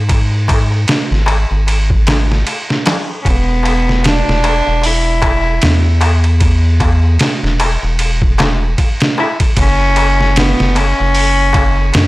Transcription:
Already playing: G#2
0.09 kick, ride, darbuka tek
0.31 darbuka tek
0.48 kick, ride, darbuka tek
0.70 darbuka tek
0.88 snare, ride, darbuka tek
1.11 G#1, snare, darbuka tek
1.26 ride, darbuka tek
1.51 G#1, darbuka tek
1.67 ride, darbuka tek
1.90 kick, darbuka tek
2.07 snare, ride, darbuka tek
2.30 snare, darbuka tek
2.47 ride, darbuka tek
2.69 snare, darbuka tek
2.86 snare, ride, darbuka tek
3.09 darbuka tek
3.22 E1 C#4, kick, ride, darbuka tek
3.28 B3
3.47 darbuka tek
3.63 ride, darbuka tek
3.86 snare, darbuka tek
4.03 snare, ride, darbuka tek
4.07 D4
4.25 E1, snare, darbuka tek
4.44 ride, darbuka tek
4.66 E1, darbuka tek
4.82 open hi-hat, darbuka tek
4.86 E4
5.04 darbuka tek
5.22 kick, ride, darbuka tek
5.44 darbuka tek
5.62 E2, snare, ride, darbuka tek
5.84 darbuka tek
6.01 ride, darbuka tek
6.23 ride, darbuka tek
6.40 kick, ride, darbuka tek
6.64 darbuka tek
6.80 kick, ride, darbuka tek
7.03 darbuka tek
7.19 snare, ride, darbuka tek
7.43 E1, snare, darbuka tek
7.60 ride, darbuka tek
7.83 E1, darbuka tek
7.99 ride, darbuka tek
8.22 kick, darbuka tek
8.38 snare, ride, darbuka tek
8.63 darbuka tek
8.78 kick, ride, darbuka tek
9.00 snare, ride, darbuka tek
9.18 E4, darbuka tek
9.40 kick, ride, darbuka tek
9.57 F#1 C#4, kick, ride, darbuka tek
9.80 darbuka tek
9.96 ride, darbuka tek
10.20 snare, darbuka tek
10.36 B3, snare, ride, darbuka tek
10.60 F#1, snare, darbuka tek
10.75 C#4, ride, darbuka tek
10.98 F#1, darbuka tek
11.15 open hi-hat, darbuka tek
11.36 darbuka tek
11.53 kick, ride, darbuka tek
11.76 darbuka tek
11.92 F#2, snare, ride, darbuka tek

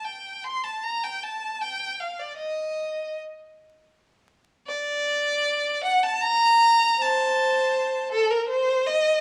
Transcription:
0.04 G5
0.44 C6
0.64 A5
0.83 A#5
1.04 G5
1.23 A5
1.61 G5
2.00 F5
2.20 D5
2.37 D#5
4.67 D5
5.84 F#5
6.03 A5
6.21 A#5
7.00 C5 A5
8.12 A4
8.31 A#4
8.49 C5
8.87 D#5

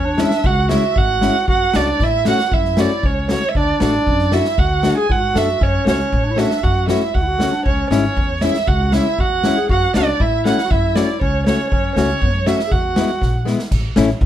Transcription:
Already playing: E2 C#5
0.06 D4
0.17 G#3 C#4 E4 E5, snare
0.31 snare
0.44 C#2 F#4 F#5, kick
0.69 G#3 C#4 E4 E5, snare
0.96 G#1 F#4 F#5, kick
1.21 G#3 C#4 E4, snare
1.48 F#2 F#4 F#5, kick
1.73 C#2 A3 C#4 D4 F#4 D5, snare
1.99 A2 E4, kick, snare
2.04 E5
2.25 A3 C#4 F#4 F#5, snare
2.38 snare
2.48 F#4
2.52 F#2 E4 E5, kick
2.65 snare
2.77 A3 C#4 F#4 D5, snare
3.03 C#2 C#4 C#5, kick
3.29 A3 C#4 F#4 C#5, snare
3.49 E5
3.55 D2 D4 D5, kick
3.80 A1 A3 D4 F#4 D5, snare
4.07 F#2, kick
4.19 snare
4.32 A3 D4 E4 F#4 E5, snare
4.45 snare
4.58 D2 F#4 F#5, kick
4.83 A3 D4 F#4, snare
4.97 G#4 G#5
5.09 G#2 F#4 F#5, kick
5.34 F#2 A3 D4 A4 E5, snare
5.61 F#2 C#4 C#5, kick
5.85 C#2 A3 C#4 F#4 C#5, snare
6.13 A2, kick
6.25 D4
6.30 E4
6.36 A3 C#4 D4 F#4 E5, snare
6.50 snare
6.62 F#2 F#4 F#5, kick
6.87 A3 C#4 E4 F#4 E5, snare
7.14 D2 F#4 F#5, kick
7.22 E4
7.27 F#4
7.38 A3 C#4 F#4, snare
7.51 D4
7.66 C#2 C#4 C#5, kick
7.90 G#1 G#3 C#4 E4 C#5, snare
8.17 E2, kick
8.41 G#3 C#4 E4 E5, snare
8.54 snare
8.67 C#2 F#4 F#5, kick
8.92 G#3 C#4 E4 E5, snare
9.18 E2 F#4 F#5, kick
9.43 G#3 C#4 E4, snare
9.57 G#4
9.69 F#2 F#4 F#5, kick
9.94 C#2 A3 C#4 D4 F#4 D5, snare
10.20 A2 E4 E5, kick
10.45 A3 C#4 F#4 F#5, snare
10.58 snare
10.64 F#4
10.71 F#2 E4 E5, kick
10.95 A3 C#4 F#4 D5, snare
11.21 C#2 C#4 C#5, kick
11.46 A3 C#4 F#4 C#5, snare
11.70 F#2 C#4 C#5, kick
11.95 C#2 A3 C#4 F#4 C#5, snare
12.22 F#2, kick
12.46 A3 C#4 F#4 E5, snare
12.59 snare
12.66 G#4
12.71 E2 F#4 F#5, kick
12.96 G#3 B3 E4, snare
13.22 A#1, kick, snare
13.45 G#3 B3 E4, snare
13.59 snare
13.71 A1, kick, crash
13.96 A1 A3 C#4 E4, snare
14.21 E2, kick

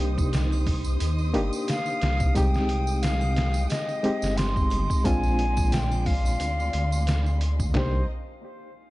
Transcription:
Already playing: C2 A#3 C4 D4 D#4 G4 C5 C6 D#6
0.18 kick, tambourine
0.33 snare, open hi-hat, tambourine
0.52 tambourine, triangle
0.67 kick, open hi-hat
0.84 tambourine
1.00 D#2, open hi-hat, tambourine
1.18 tambourine
1.33 G1 A#3 D4 D#4 G4, open hi-hat
1.53 tambourine
1.68 F5, snare, open hi-hat, tambourine
1.86 tambourine
2.02 C2, snare, open hi-hat
2.20 kick, tambourine
2.35 C2 G#3 C4 D#4 G4 G5, kick, open hi-hat, tambourine
2.54 snare, tambourine
2.69 open hi-hat
2.87 tambourine
3.02 F5, snare, open hi-hat, tambourine
3.21 tambourine, triangle
3.36 snare, open hi-hat
3.54 tambourine
3.70 D#5, snare, open hi-hat, tambourine
3.89 tambourine
4.03 G#3 C4 D#4 G4, open hi-hat
4.22 G1, snare, tambourine
4.37 C6, snare, open hi-hat, tambourine
4.56 kick, tambourine
4.70 G1, open hi-hat, triangle
4.90 kick, tambourine
5.04 A#1 G#3 C4 D4 F4 D5 G#5 C6, kick, open hi-hat, tambourine
5.23 tambourine
5.39 open hi-hat
5.57 kick, tambourine
5.72 G5, snare, open hi-hat, tambourine
5.92 tambourine, triangle
6.06 F5, kick, open hi-hat
6.25 tambourine, triangle
6.40 D2, open hi-hat, tambourine
6.60 tambourine
6.73 D2, open hi-hat
6.92 tambourine
7.07 snare, open hi-hat, tambourine
7.26 tambourine
7.41 open hi-hat
7.60 kick, tambourine
7.74 C2 A#3 C4 D4 D#4 G4 A#4 C5 D#5, snare, clap, floor tom

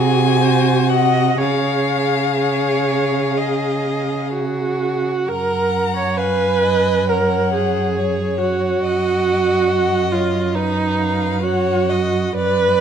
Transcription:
Already playing: C3 F#4 G#4 G#5
0.41 C5
0.89 D#5 F#5
1.38 C#3 G#4 C#5 F5
2.38 C#5
3.37 D#5
4.33 F#4
5.28 F#2 A#4 F#5 A#5
5.97 C#5
6.17 B4 F5 G#5
6.63 D#5
7.08 A#4 C#5 F#5
7.53 G#4
7.96 C#5
8.40 F#4
8.84 F#2 D#5
9.70 D#5 F#5
10.12 F4 C#5
10.55 D#4 B4 D#5
10.98 F5
11.43 F#4 C#5 F#5
11.89 D#5
12.35 F#2 B4 D5

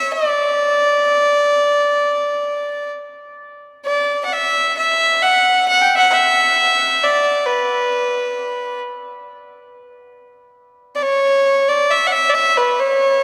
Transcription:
Already playing: E5
0.12 D5
3.85 D5
4.25 F#5
4.32 E5
4.78 E5
5.22 F#5
5.68 F#5
5.81 F#5 G5
5.95 E5 F#5
6.11 E5
7.03 D5
7.46 B4
10.95 D5
11.02 C#5
11.68 D5
11.91 E5
12.07 F#5
12.12 E5
12.30 D5
12.34 E5
12.57 B4
12.80 C#5

